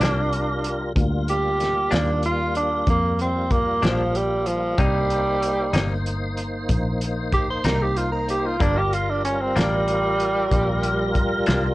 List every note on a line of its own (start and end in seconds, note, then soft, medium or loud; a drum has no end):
0.00 0.93 C2 medium
0.00 0.21 G2 medium
0.00 0.20 F3 medium
0.00 0.93 G3 medium
0.00 0.20 A#3 medium
0.00 0.92 D4 medium
0.00 0.20 D4 medium
0.00 0.93 F4 medium
0.00 0.92 A#4 medium
0.00 snare medium
0.00 closed hi-hat medium
0.33 closed hi-hat medium
0.64 closed hi-hat medium
0.96 1.89 D2 medium
0.96 4.75 G3 medium
0.96 4.75 A#3 medium
0.96 4.75 F4 medium
0.96 kick medium
0.96 closed hi-hat medium
1.28 1.94 G4 medium
1.28 closed hi-hat medium
1.60 snare soft
1.60 closed hi-hat medium
1.91 2.85 D#2 medium
1.91 2.11 G2 soft
1.91 2.11 F3 medium
1.91 2.11 A#3 medium
1.91 2.10 D4 medium
1.91 2.23 D4 medium
1.91 snare loud
1.91 closed hi-hat medium
2.23 2.56 F4 medium
2.23 closed hi-hat medium
2.55 2.87 D4 medium
2.55 closed hi-hat medium
2.87 3.80 F2 medium
2.87 3.19 A#3 medium
2.87 kick medium
2.87 closed hi-hat medium
3.19 3.53 C4 medium
3.19 closed hi-hat medium
3.51 3.85 A#3 medium
3.51 kick medium
3.51 closed hi-hat soft
3.82 4.75 A#1 medium
3.82 4.02 G2 soft
3.82 4.02 F3 soft
3.82 4.18 F3 medium
3.82 4.02 A#3 medium
3.82 4.02 D4 medium
3.82 snare medium
3.82 closed hi-hat medium
4.15 4.48 G3 medium
4.15 closed hi-hat soft
4.46 4.81 F3 medium
4.46 closed hi-hat medium
4.78 5.71 C2 medium
4.78 4.97 C3 medium
4.78 4.97 G3 medium
4.78 6.02 G3 loud
4.78 8.57 A#3 medium
4.78 4.98 A#3 medium
4.78 8.57 D#4 medium
4.78 4.98 D#4 medium
4.78 8.57 C5 medium
4.78 kick loud
4.78 closed hi-hat medium
5.10 closed hi-hat medium
5.42 closed hi-hat medium
5.73 6.66 G1 medium
5.73 5.94 C3 medium
5.73 5.94 G3 medium
5.73 5.93 A#3 medium
5.73 5.93 D#4 medium
5.73 snare loud
5.73 closed hi-hat medium
6.06 closed hi-hat medium
6.37 closed hi-hat medium
6.69 7.62 A#1 medium
6.69 kick medium
6.69 closed hi-hat medium
7.01 closed hi-hat medium
7.33 7.48 G4 medium
7.33 kick medium
7.33 closed hi-hat medium
7.50 7.67 C5 medium
7.64 8.58 C2 medium
7.64 7.85 C3 medium
7.64 7.85 G3 medium
7.64 7.84 A#3 medium
7.64 7.84 D#4 medium
7.64 7.84 A#4 medium
7.64 snare loud
7.64 closed hi-hat medium
7.82 7.99 G4 medium
7.97 8.11 F4 medium
7.97 closed hi-hat medium
8.12 8.27 A#4 medium
8.29 8.47 G4 medium
8.29 closed hi-hat medium
8.46 8.63 F4 medium
8.60 9.53 G1 medium
8.60 8.79 G2 medium
8.60 8.80 F3 medium
8.60 11.74 G3 medium
8.60 8.80 A#3 medium
8.60 8.79 D4 medium
8.60 8.80 D4 medium
8.60 11.74 F4 medium
8.60 11.74 A#4 medium
8.60 kick medium
8.60 closed hi-hat medium
8.78 8.95 G4 medium
8.93 9.11 F4 medium
8.93 closed hi-hat medium
9.10 9.24 D4 medium
9.25 9.43 C#4 medium
9.25 closed hi-hat medium
9.41 9.59 C4 medium
9.56 10.49 A1 medium
9.56 9.76 G2 medium
9.56 9.76 F3 medium
9.56 11.44 G3 loud
9.56 9.76 A#3 medium
9.56 9.75 D4 medium
9.56 snare loud
9.56 closed hi-hat medium
9.88 closed hi-hat medium
10.20 closed hi-hat soft
10.51 11.44 A#1 medium
10.51 kick medium
10.51 closed hi-hat medium
10.83 closed hi-hat medium
11.15 kick medium
11.15 closed hi-hat medium
11.46 11.74 C2 medium
11.46 11.67 G2 medium
11.46 11.67 F3 medium
11.46 11.66 A#3 medium
11.46 11.66 D4 medium
11.46 snare medium
11.46 closed hi-hat medium